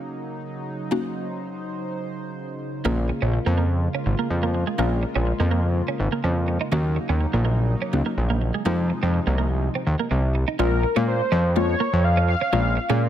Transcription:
0.00 8.62 C#3 medium
0.00 2.81 F#3 medium
0.00 0.87 A#3 medium
0.00 0.90 A#3 medium
0.00 0.88 C#4 medium
0.00 0.88 D#4 medium
0.00 2.81 D#4 medium
0.00 0.88 F#4 medium
0.91 2.81 A#3 medium
0.91 2.81 C#4 medium
0.91 2.81 D#4 medium
0.91 2.81 F#4 medium
0.91 2.83 C5 medium
2.85 3.11 A#1 loud
2.85 6.68 G#3 medium
2.85 4.75 A#3 medium
2.85 2.93 A#3 medium
2.85 6.68 A#3 medium
2.85 4.75 C#4 medium
2.85 6.68 F4 medium
2.85 4.75 F4 medium
2.85 4.75 G#4 medium
3.09 muted clean electric guitar stroke soft
3.22 3.39 A#1 medium
3.22 3.29 C#4 medium
3.34 muted clean electric guitar stroke soft
3.46 3.88 F2 loud
3.46 3.54 A#3 medium
3.58 3.66 A#3 medium
3.95 4.02 C#4 medium
4.06 4.15 G#1 medium
4.06 muted clean electric guitar stroke soft
4.19 4.26 A#3 medium
4.30 4.64 F2 medium
4.43 4.50 A#3 medium
4.54 muted clean electric guitar stroke soft
4.67 4.75 G#3 medium
4.78 5.05 A#1 loud
4.78 6.68 A#3 medium
4.78 4.87 A#3 medium
4.78 6.68 C#4 medium
4.78 6.68 F4 medium
4.78 6.69 A#4 medium
5.03 muted clean electric guitar stroke soft
5.16 5.33 A#1 medium
5.16 5.23 C#4 medium
5.27 muted clean electric guitar stroke soft
5.40 5.82 F2 loud
5.40 5.47 A#3 medium
5.51 5.59 A#3 medium
5.88 5.96 C#4 medium
6.00 6.09 G#1 medium
6.00 muted clean electric guitar stroke soft
6.12 6.20 A#3 medium
6.24 6.58 F2 medium
6.24 6.32 C#4 medium
6.48 muted clean electric guitar stroke soft
6.61 6.68 D#4 medium
6.72 6.98 D#2 loud
6.72 8.64 F#3 medium
6.72 7.90 A#3 medium
6.72 8.64 A#3 medium
6.72 7.91 C#4 medium
6.72 6.80 D#4 medium
6.72 8.64 D#4 medium
6.72 7.91 D#4 medium
6.72 7.91 F#4 medium
6.96 muted clean electric guitar stroke soft
7.09 7.26 D#2 medium
7.09 7.17 C#4 medium
7.21 muted clean electric guitar stroke soft
7.33 7.75 A#1 medium
7.33 7.41 A#3 medium
7.45 7.53 A#3 medium
7.82 7.89 C#4 medium
7.93 8.02 C#2 medium
7.93 8.66 A#3 medium
7.93 8.66 C#4 medium
7.93 8.65 D#4 medium
7.93 8.66 F#4 medium
7.93 muted clean electric guitar stroke soft
8.06 8.13 A#3 medium
8.17 8.51 A#1 medium
8.30 8.37 A#3 medium
8.42 muted clean electric guitar stroke soft
8.54 8.62 G#3 medium
8.65 8.92 F2 loud
8.65 10.57 C3 medium
8.65 10.57 F3 medium
8.65 10.55 G#3 medium
8.65 10.57 G#3 medium
8.65 8.74 A#3 medium
8.65 10.55 C4 medium
8.65 10.57 D#4 medium
8.65 10.56 D#4 medium
8.65 10.56 F4 medium
8.90 muted clean electric guitar stroke soft
9.03 9.20 F2 medium
9.03 9.10 C4 medium
9.14 muted clean electric guitar stroke soft
9.27 9.69 C2 medium
9.27 9.34 A#3 medium
9.38 9.47 A#3 medium
9.75 9.83 C4 medium
9.87 9.96 D#2 medium
9.87 muted clean electric guitar stroke soft
10.00 10.07 A#3 medium
10.11 10.45 C2 medium
10.11 10.19 C4 medium
10.35 muted clean electric guitar stroke soft
10.48 10.55 D#4 medium
10.59 10.85 A#1 loud
10.59 10.77 G#3 medium
10.59 10.77 A#3 medium
10.59 10.68 A#3 medium
10.59 10.78 C#4 medium
10.59 10.78 F4 medium
10.59 11.04 A#4 medium
10.83 muted clean electric guitar stroke soft
10.96 11.21 A#2 loud
10.96 11.26 G#3 medium
10.96 11.26 A#3 medium
10.96 11.04 C#4 medium
10.96 11.26 C#4 medium
10.96 11.26 F4 medium
11.08 11.53 C5 medium
11.32 11.75 F2 loud
11.32 11.40 C#4 medium
11.56 12.03 G#3 medium
11.56 12.04 A#3 medium
11.56 12.04 C#4 medium
11.56 12.04 F4 medium
11.56 12.06 C#5 loud
11.80 11.88 A#3 medium
11.93 12.35 F2 medium
12.04 12.28 F5 loud
12.17 12.25 C#4 medium
12.29 13.09 F5 loud
12.29 muted clean electric guitar stroke soft
12.41 12.49 C#4 medium
12.53 12.79 A#1 loud
12.53 12.71 G#3 medium
12.53 12.71 A#3 medium
12.53 12.61 A#3 medium
12.53 12.71 C#4 medium
12.53 12.71 F4 medium
12.77 muted clean electric guitar stroke soft
12.89 13.09 A#2 medium
12.89 13.09 G#3 medium
12.89 13.09 A#3 medium
12.89 12.97 C#4 medium
12.89 13.09 C#4 medium
12.89 13.09 G#4 loud

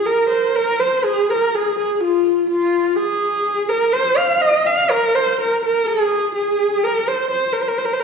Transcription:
0.06 0.29 A#4 medium
0.06 0.55 A#4 medium
0.30 0.56 C5 medium
0.55 0.81 A#4 loud
0.55 0.82 A#4 medium
0.80 1.06 C5 medium
1.04 1.31 G#4 medium
1.29 1.57 A#4 medium
1.29 1.35 C5 medium
1.34 1.51 A#4 medium
1.51 1.77 G#4 medium
1.51 1.57 A#4 medium
1.56 1.72 G#4 medium
1.73 1.99 G#4 medium
1.79 1.94 G#4 medium
1.94 2.02 G#4 medium
1.99 2.48 F4 medium
1.99 2.05 G#4 medium
2.04 2.46 F4 medium
2.47 2.97 F4 medium
2.47 2.98 F4 medium
2.95 3.40 G#4 medium
2.95 3.70 G#4 loud
3.68 3.94 A#4 medium
3.68 3.73 C5 medium
3.72 3.95 A#4 medium
3.93 4.19 C5 loud
3.93 4.39 C5 medium
4.17 4.43 F5 loud
4.40 4.67 D#5 medium
4.40 4.68 D#5 loud
4.66 4.92 F5 medium
4.66 4.90 F5 medium
4.66 4.70 G#5 medium
4.89 5.17 A#4 loud
4.89 5.37 A#4 medium
4.89 4.93 C5 medium
5.16 5.38 C5 loud
5.37 5.59 A#4 medium
5.37 5.61 A#4 medium
5.61 5.86 A#4 medium
5.65 5.88 A#4 medium
5.84 6.33 G#4 medium
5.84 6.34 G#4 loud
6.34 6.86 G#4 medium
6.34 6.85 G#4 medium
6.84 7.09 A#4 medium
6.84 6.90 C5 medium
6.89 7.10 A#4 medium
7.07 7.30 C5 medium
7.07 7.31 C5 medium
7.31 7.55 C5 medium
7.31 7.54 C5 medium
7.53 7.63 A#4 medium
7.61 7.69 C5 medium
7.68 7.80 A#4 medium
7.78 7.87 C5 medium
7.85 7.95 A#4 medium
7.93 8.02 C5 medium
8.00 8.04 A#4 medium

